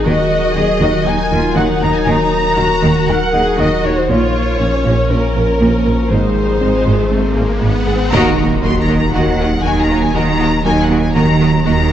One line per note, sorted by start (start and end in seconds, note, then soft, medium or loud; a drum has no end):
0.05 4.11 D#1 medium
0.05 0.13 D#2 medium
0.05 0.16 D#2 medium
0.05 0.13 D#3 medium
0.05 0.21 D#3 medium
0.05 3.93 F#3 medium
0.05 0.56 F#4 medium
0.05 3.93 A#4 medium
0.05 1.05 D#5 medium
0.05 1.08 D#5 loud
0.05 1.05 D#5 medium
0.56 0.64 D#2 medium
0.56 0.66 D#2 medium
0.56 0.64 D#3 medium
0.56 0.72 F#3 medium
0.56 0.81 G#4 medium
0.81 0.89 D#2 medium
0.81 0.92 D#2 medium
0.81 0.96 D#3 medium
0.81 0.89 D#3 medium
0.81 1.07 F#4 medium
1.06 1.15 D#2 medium
1.06 1.17 D#2 medium
1.06 1.15 D#3 medium
1.06 1.22 F#3 medium
1.06 1.32 D#4 medium
1.06 1.57 G#5 medium
1.06 1.60 G#5 loud
1.06 1.57 G#5 medium
1.31 1.39 D#2 medium
1.31 1.42 D#2 medium
1.31 1.40 D#3 medium
1.31 1.47 D#4 medium
1.31 1.57 F4 medium
1.56 1.64 D#2 medium
1.56 1.67 D#2 medium
1.56 1.71 D#3 medium
1.56 1.64 D#3 medium
1.56 2.58 D#4 medium
1.56 1.81 F#5 medium
1.56 1.82 F#5 medium
1.56 1.83 F#5 medium
1.81 1.89 D#2 medium
1.81 1.92 D#2 medium
1.81 1.90 D#3 medium
1.81 1.97 D#4 medium
1.81 1.95 A#5 medium
1.81 1.94 A#5 medium
1.81 1.99 A#5 loud
1.95 2.08 G#5 medium
1.95 2.12 G#5 loud
2.06 2.14 D#2 medium
2.06 2.18 D#2 medium
2.06 2.22 D#3 medium
2.06 2.15 D#3 medium
2.06 3.08 A#5 medium
2.06 3.09 A#5 medium
2.10 3.11 A#5 loud
2.57 2.66 D#2 medium
2.57 2.68 D#2 medium
2.57 2.65 D#3 medium
2.57 2.72 F#3 medium
2.57 3.09 F#4 medium
2.82 2.90 D#2 medium
2.82 2.94 D#2 medium
2.82 2.91 D#3 medium
2.82 2.98 D#3 medium
3.07 3.15 D#2 medium
3.07 3.19 D#2 medium
3.07 3.16 D#3 medium
3.07 3.23 F#3 medium
3.07 3.34 A#4 medium
3.07 3.59 F#5 medium
3.07 3.61 F#5 loud
3.33 3.41 D#2 medium
3.33 3.44 D#2 medium
3.33 3.41 D#3 medium
3.33 3.49 D#4 medium
3.33 3.59 G#4 medium
3.58 3.66 D#2 medium
3.58 3.69 D#2 medium
3.58 3.67 D#3 medium
3.58 3.74 D#3 medium
3.58 4.10 F#4 medium
3.58 3.84 D#5 medium
3.58 3.87 D#5 loud
3.83 3.91 D#2 medium
3.83 3.95 D#2 medium
3.83 3.92 D#3 medium
3.83 3.99 D#4 medium
3.83 3.97 C#5 medium
3.83 3.99 C#5 medium
3.97 4.10 C5 medium
3.97 4.09 C5 medium
4.09 4.17 A#1 medium
4.09 6.13 A#1 medium
4.09 4.20 A#1 medium
4.09 4.18 A#2 medium
4.09 7.08 F3 medium
4.09 4.25 A#3 medium
4.09 4.60 F4 medium
4.09 6.08 A#4 medium
4.09 5.09 C#5 medium
4.09 5.11 C#5 loud
4.09 5.11 C#5 medium
4.09 riser medium
4.59 4.67 A#1 medium
4.59 4.70 A#1 soft
4.59 4.69 A#2 soft
4.59 4.75 C#4 medium
4.59 5.59 C#4 medium
4.84 4.92 A#1 medium
4.84 4.95 A#1 medium
4.84 4.94 A#2 medium
4.84 5.00 A#3 medium
5.10 5.20 A#1 soft
5.10 5.18 A#1 soft
5.10 5.20 A#2 soft
5.10 5.26 C#4 medium
5.10 6.11 A#4 loud
5.10 6.09 A#4 medium
5.10 6.12 A#4 medium
5.35 5.43 A#1 soft
5.35 5.46 A#1 medium
5.35 5.44 A#2 soft
5.35 5.51 A#4 medium
5.60 5.68 A#1 medium
5.60 5.71 A#1 medium
5.60 5.68 A#2 medium
5.60 5.76 A#3 medium
5.60 6.10 C#4 medium
5.86 5.94 A#1 soft
5.86 5.96 A#1 soft
5.86 5.94 A#2 soft
5.86 6.01 A#4 medium
6.10 8.13 G#1 medium
6.10 6.19 G#1 medium
6.10 6.21 G#1 medium
6.10 6.19 G#2 medium
6.10 6.26 G#3 medium
6.10 7.88 D#4 medium
6.10 7.84 G#4 medium
6.10 7.62 C5 loud
6.10 7.62 C5 medium
6.10 7.63 C5 medium
6.61 6.72 G#1 soft
6.61 6.70 G#1 soft
6.61 6.69 G#2 soft
6.61 6.76 C4 medium
6.86 6.94 G#1 medium
6.86 6.97 G#1 medium
6.86 6.94 G#2 medium
6.86 7.01 G#3 medium
7.11 7.19 G#1 soft
7.11 7.22 G#1 soft
7.11 7.20 G#2 soft
7.11 7.88 D#3 medium
7.11 7.26 C4 medium
7.37 7.45 G#1 soft
7.37 7.47 G#1 soft
7.37 7.45 G#2 soft
7.37 7.52 G#4 medium
7.61 7.70 G#1 medium
7.61 7.73 G#1 medium
7.61 7.70 G#2 medium
7.61 7.77 G#3 medium
7.61 8.09 F#5 medium
7.87 7.98 G#1 soft
7.87 7.96 G#1 soft
7.87 7.95 G#2 soft
7.87 8.03 G#4 medium
8.12 11.92 D#1 medium
8.12 8.55 D#2 loud
8.12 8.55 D#2 medium
8.12 8.55 D#3 medium
8.12 8.28 D#3 loud
8.12 8.37 D#3 loud
8.12 8.36 A#3 loud
8.12 8.36 F#4 loud
8.12 8.37 F#4 loud
8.12 8.36 A#4 medium
8.12 8.36 D#5 loud
8.12 8.60 A#5 loud
8.12 impact medium
8.37 8.45 A#3 medium
8.37 8.53 D#4 medium
8.37 8.45 F#4 medium
8.37 8.45 A#4 medium
8.37 8.45 D#5 medium
8.63 9.08 D#2 medium
8.63 9.08 D#3 medium
8.63 8.78 F#3 medium
8.63 8.71 A#3 medium
8.63 8.71 F#4 medium
8.63 8.72 A#4 medium
8.63 8.71 D#5 medium
8.63 8.80 C6 loud
8.81 8.97 A#5 medium
8.88 8.96 A#3 medium
8.88 9.04 A#3 medium
8.88 8.96 F#4 medium
8.88 8.97 A#4 medium
8.88 8.97 D#5 medium
8.98 9.14 A#5 medium
9.13 9.58 D#2 medium
9.13 9.29 D#3 loud
9.13 9.58 D#3 medium
9.13 9.32 D#3 medium
9.13 9.21 A#3 medium
9.13 9.21 F#4 medium
9.13 9.33 F#4 medium
9.13 9.23 A#4 medium
9.13 9.23 D#5 medium
9.13 9.64 F#5 medium
9.39 9.54 F#3 medium
9.39 9.47 A#3 medium
9.39 9.47 F#4 medium
9.39 9.48 A#4 medium
9.39 9.48 D#5 medium
9.63 10.09 D#2 medium
9.63 10.09 D#3 medium
9.63 9.72 A#3 medium
9.63 9.79 D#4 medium
9.63 9.72 F#4 medium
9.63 9.73 A#4 medium
9.63 9.73 D#5 medium
9.63 9.81 G#5 loud
9.82 9.98 A#5 medium
9.89 9.98 A#3 medium
9.89 9.97 F#4 medium
9.89 9.98 A#4 medium
9.89 9.98 D#5 medium
10.00 10.16 G#5 medium
10.14 10.59 D#2 medium
10.14 10.29 D#3 loud
10.14 10.59 D#3 medium
10.14 10.32 D#3 medium
10.14 10.22 A#3 medium
10.14 10.22 F#4 medium
10.14 10.33 F#4 medium
10.14 10.23 A#4 medium
10.14 10.23 D#5 medium
10.14 10.65 A#5 loud
10.39 10.48 A#3 medium
10.39 10.55 D#4 medium
10.39 10.47 F#4 medium
10.39 10.48 A#4 medium
10.39 10.47 D#5 medium
10.64 11.09 D#2 medium
10.64 11.10 D#2 medium
10.64 11.09 D#3 medium
10.64 10.80 F#3 medium
10.64 10.73 A#3 medium
10.64 10.73 F#4 medium
10.64 10.73 A#4 medium
10.64 10.73 D#5 medium
10.64 10.82 G#5 medium
10.83 10.99 F#5 medium
10.90 11.05 A#3 medium
10.90 10.98 A#3 medium
10.90 10.98 F#4 medium
10.90 10.98 A#4 medium
10.90 10.99 D#5 medium
11.00 11.16 G#5 medium
11.13 11.60 D#2 medium
11.13 11.60 D#3 medium
11.13 11.31 D#3 loud
11.13 11.34 D#3 medium
11.13 11.23 A#3 medium
11.13 11.23 F#4 medium
11.13 11.34 F#4 medium
11.13 11.23 A#4 medium
11.13 11.23 D#5 medium
11.13 11.63 A#5 loud
11.40 11.56 F#3 medium
11.40 11.49 A#3 medium
11.40 11.49 F#4 medium
11.40 11.48 A#4 medium
11.40 11.48 D#5 medium
11.65 11.92 D#2 medium
11.65 11.92 D#3 medium
11.65 11.73 A#3 medium
11.65 11.82 D#4 medium
11.65 11.73 F#4 medium
11.65 11.73 A#4 medium
11.65 11.74 D#5 medium
11.65 11.92 A#5 medium